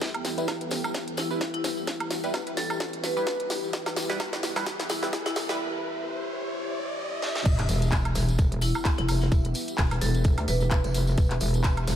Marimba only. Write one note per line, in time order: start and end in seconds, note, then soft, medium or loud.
1.18 1.51 E4 medium
1.54 1.74 E4 medium
2.57 3.02 A4 medium
3.04 3.12 B4 medium
3.17 3.23 B4 medium
4.90 5.23 E4 medium
5.26 5.46 E4 medium
8.62 8.96 E4 medium
8.98 9.18 E4 medium
10.02 10.46 A4 medium
10.48 10.56 B4 medium
10.61 10.68 B4 medium